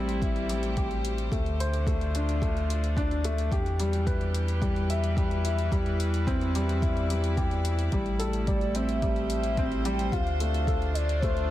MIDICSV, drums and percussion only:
0, 0, Header, 1, 2, 480
1, 0, Start_track
1, 0, Key_signature, 0, "minor"
1, 0, Tempo, 550459
1, 1151, Time_signature, 4, 2, 24, 8
1, 10032, End_track
2, 0, Start_track
2, 0, Title_t, "Drums"
2, 76, Note_on_c, 9, 42, 29
2, 164, Note_off_c, 9, 42, 0
2, 189, Note_on_c, 9, 36, 96
2, 195, Note_on_c, 9, 42, 37
2, 276, Note_off_c, 9, 36, 0
2, 282, Note_off_c, 9, 42, 0
2, 313, Note_on_c, 9, 42, 18
2, 400, Note_off_c, 9, 42, 0
2, 431, Note_on_c, 9, 42, 67
2, 518, Note_off_c, 9, 42, 0
2, 548, Note_on_c, 9, 42, 27
2, 636, Note_off_c, 9, 42, 0
2, 670, Note_on_c, 9, 36, 86
2, 670, Note_on_c, 9, 42, 38
2, 757, Note_off_c, 9, 42, 0
2, 758, Note_off_c, 9, 36, 0
2, 792, Note_on_c, 9, 42, 18
2, 880, Note_off_c, 9, 42, 0
2, 912, Note_on_c, 9, 42, 65
2, 999, Note_off_c, 9, 42, 0
2, 1032, Note_on_c, 9, 42, 29
2, 1119, Note_off_c, 9, 42, 0
2, 1148, Note_on_c, 9, 36, 97
2, 1156, Note_on_c, 9, 42, 39
2, 1235, Note_off_c, 9, 36, 0
2, 1243, Note_off_c, 9, 42, 0
2, 1276, Note_on_c, 9, 42, 19
2, 1363, Note_off_c, 9, 42, 0
2, 1398, Note_on_c, 9, 42, 70
2, 1485, Note_off_c, 9, 42, 0
2, 1513, Note_on_c, 9, 42, 29
2, 1600, Note_off_c, 9, 42, 0
2, 1627, Note_on_c, 9, 36, 92
2, 1635, Note_on_c, 9, 42, 39
2, 1714, Note_off_c, 9, 36, 0
2, 1722, Note_off_c, 9, 42, 0
2, 1756, Note_on_c, 9, 42, 20
2, 1843, Note_off_c, 9, 42, 0
2, 1873, Note_on_c, 9, 42, 62
2, 1960, Note_off_c, 9, 42, 0
2, 1995, Note_on_c, 9, 42, 30
2, 2082, Note_off_c, 9, 42, 0
2, 2108, Note_on_c, 9, 36, 98
2, 2116, Note_on_c, 9, 42, 38
2, 2195, Note_off_c, 9, 36, 0
2, 2203, Note_off_c, 9, 42, 0
2, 2238, Note_on_c, 9, 42, 20
2, 2326, Note_off_c, 9, 42, 0
2, 2356, Note_on_c, 9, 42, 71
2, 2444, Note_off_c, 9, 42, 0
2, 2474, Note_on_c, 9, 42, 29
2, 2561, Note_off_c, 9, 42, 0
2, 2586, Note_on_c, 9, 36, 94
2, 2595, Note_on_c, 9, 42, 41
2, 2673, Note_off_c, 9, 36, 0
2, 2682, Note_off_c, 9, 42, 0
2, 2715, Note_on_c, 9, 42, 20
2, 2802, Note_off_c, 9, 42, 0
2, 2829, Note_on_c, 9, 42, 69
2, 2917, Note_off_c, 9, 42, 0
2, 2951, Note_on_c, 9, 42, 31
2, 3038, Note_off_c, 9, 42, 0
2, 3066, Note_on_c, 9, 36, 99
2, 3072, Note_on_c, 9, 42, 38
2, 3153, Note_off_c, 9, 36, 0
2, 3160, Note_off_c, 9, 42, 0
2, 3193, Note_on_c, 9, 42, 20
2, 3280, Note_off_c, 9, 42, 0
2, 3310, Note_on_c, 9, 42, 72
2, 3397, Note_off_c, 9, 42, 0
2, 3428, Note_on_c, 9, 42, 31
2, 3516, Note_off_c, 9, 42, 0
2, 3546, Note_on_c, 9, 36, 96
2, 3550, Note_on_c, 9, 42, 44
2, 3633, Note_off_c, 9, 36, 0
2, 3637, Note_off_c, 9, 42, 0
2, 3671, Note_on_c, 9, 42, 18
2, 3758, Note_off_c, 9, 42, 0
2, 3789, Note_on_c, 9, 42, 66
2, 3876, Note_off_c, 9, 42, 0
2, 3910, Note_on_c, 9, 42, 31
2, 3997, Note_off_c, 9, 42, 0
2, 4025, Note_on_c, 9, 36, 108
2, 4032, Note_on_c, 9, 42, 41
2, 4113, Note_off_c, 9, 36, 0
2, 4119, Note_off_c, 9, 42, 0
2, 4154, Note_on_c, 9, 42, 20
2, 4241, Note_off_c, 9, 42, 0
2, 4271, Note_on_c, 9, 42, 71
2, 4359, Note_off_c, 9, 42, 0
2, 4392, Note_on_c, 9, 42, 30
2, 4479, Note_off_c, 9, 42, 0
2, 4506, Note_on_c, 9, 36, 92
2, 4514, Note_on_c, 9, 42, 41
2, 4593, Note_off_c, 9, 36, 0
2, 4601, Note_off_c, 9, 42, 0
2, 4632, Note_on_c, 9, 42, 20
2, 4719, Note_off_c, 9, 42, 0
2, 4750, Note_on_c, 9, 42, 75
2, 4838, Note_off_c, 9, 42, 0
2, 4870, Note_on_c, 9, 42, 30
2, 4958, Note_off_c, 9, 42, 0
2, 4986, Note_on_c, 9, 36, 98
2, 4992, Note_on_c, 9, 42, 41
2, 5073, Note_off_c, 9, 36, 0
2, 5079, Note_off_c, 9, 42, 0
2, 5110, Note_on_c, 9, 42, 18
2, 5198, Note_off_c, 9, 42, 0
2, 5231, Note_on_c, 9, 42, 68
2, 5319, Note_off_c, 9, 42, 0
2, 5353, Note_on_c, 9, 42, 31
2, 5440, Note_off_c, 9, 42, 0
2, 5467, Note_on_c, 9, 36, 99
2, 5473, Note_on_c, 9, 42, 41
2, 5554, Note_off_c, 9, 36, 0
2, 5560, Note_off_c, 9, 42, 0
2, 5593, Note_on_c, 9, 42, 20
2, 5680, Note_off_c, 9, 42, 0
2, 5713, Note_on_c, 9, 42, 67
2, 5800, Note_off_c, 9, 42, 0
2, 5836, Note_on_c, 9, 42, 30
2, 5924, Note_off_c, 9, 42, 0
2, 5949, Note_on_c, 9, 36, 106
2, 5955, Note_on_c, 9, 42, 41
2, 6036, Note_off_c, 9, 36, 0
2, 6042, Note_off_c, 9, 42, 0
2, 6076, Note_on_c, 9, 42, 19
2, 6163, Note_off_c, 9, 42, 0
2, 6193, Note_on_c, 9, 42, 70
2, 6280, Note_off_c, 9, 42, 0
2, 6311, Note_on_c, 9, 42, 32
2, 6398, Note_off_c, 9, 42, 0
2, 6428, Note_on_c, 9, 36, 95
2, 6431, Note_on_c, 9, 42, 39
2, 6515, Note_off_c, 9, 36, 0
2, 6518, Note_off_c, 9, 42, 0
2, 6551, Note_on_c, 9, 42, 21
2, 6638, Note_off_c, 9, 42, 0
2, 6669, Note_on_c, 9, 42, 74
2, 6757, Note_off_c, 9, 42, 0
2, 6790, Note_on_c, 9, 42, 30
2, 6877, Note_off_c, 9, 42, 0
2, 6907, Note_on_c, 9, 42, 38
2, 6908, Note_on_c, 9, 36, 94
2, 6994, Note_off_c, 9, 42, 0
2, 6995, Note_off_c, 9, 36, 0
2, 7027, Note_on_c, 9, 42, 19
2, 7114, Note_off_c, 9, 42, 0
2, 7147, Note_on_c, 9, 42, 65
2, 7234, Note_off_c, 9, 42, 0
2, 7267, Note_on_c, 9, 42, 29
2, 7354, Note_off_c, 9, 42, 0
2, 7388, Note_on_c, 9, 36, 95
2, 7388, Note_on_c, 9, 42, 40
2, 7475, Note_off_c, 9, 36, 0
2, 7475, Note_off_c, 9, 42, 0
2, 7510, Note_on_c, 9, 42, 19
2, 7597, Note_off_c, 9, 42, 0
2, 7628, Note_on_c, 9, 42, 67
2, 7715, Note_off_c, 9, 42, 0
2, 7749, Note_on_c, 9, 42, 30
2, 7837, Note_off_c, 9, 42, 0
2, 7868, Note_on_c, 9, 36, 98
2, 7868, Note_on_c, 9, 42, 39
2, 7955, Note_off_c, 9, 36, 0
2, 7955, Note_off_c, 9, 42, 0
2, 7989, Note_on_c, 9, 42, 19
2, 8076, Note_off_c, 9, 42, 0
2, 8108, Note_on_c, 9, 42, 70
2, 8195, Note_off_c, 9, 42, 0
2, 8227, Note_on_c, 9, 42, 29
2, 8315, Note_off_c, 9, 42, 0
2, 8348, Note_on_c, 9, 36, 97
2, 8349, Note_on_c, 9, 42, 41
2, 8435, Note_off_c, 9, 36, 0
2, 8436, Note_off_c, 9, 42, 0
2, 8473, Note_on_c, 9, 42, 19
2, 8560, Note_off_c, 9, 42, 0
2, 8591, Note_on_c, 9, 42, 70
2, 8678, Note_off_c, 9, 42, 0
2, 8712, Note_on_c, 9, 42, 29
2, 8800, Note_off_c, 9, 42, 0
2, 8827, Note_on_c, 9, 36, 93
2, 8834, Note_on_c, 9, 42, 40
2, 8914, Note_off_c, 9, 36, 0
2, 8921, Note_off_c, 9, 42, 0
2, 8953, Note_on_c, 9, 42, 18
2, 9040, Note_off_c, 9, 42, 0
2, 9072, Note_on_c, 9, 42, 65
2, 9159, Note_off_c, 9, 42, 0
2, 9195, Note_on_c, 9, 42, 29
2, 9282, Note_off_c, 9, 42, 0
2, 9306, Note_on_c, 9, 36, 84
2, 9313, Note_on_c, 9, 42, 39
2, 9393, Note_off_c, 9, 36, 0
2, 9400, Note_off_c, 9, 42, 0
2, 9434, Note_on_c, 9, 42, 18
2, 9522, Note_off_c, 9, 42, 0
2, 9552, Note_on_c, 9, 42, 64
2, 9639, Note_off_c, 9, 42, 0
2, 9673, Note_on_c, 9, 42, 29
2, 9760, Note_off_c, 9, 42, 0
2, 9788, Note_on_c, 9, 36, 105
2, 9794, Note_on_c, 9, 42, 40
2, 9875, Note_off_c, 9, 36, 0
2, 9881, Note_off_c, 9, 42, 0
2, 9912, Note_on_c, 9, 42, 19
2, 9999, Note_off_c, 9, 42, 0
2, 10032, End_track
0, 0, End_of_file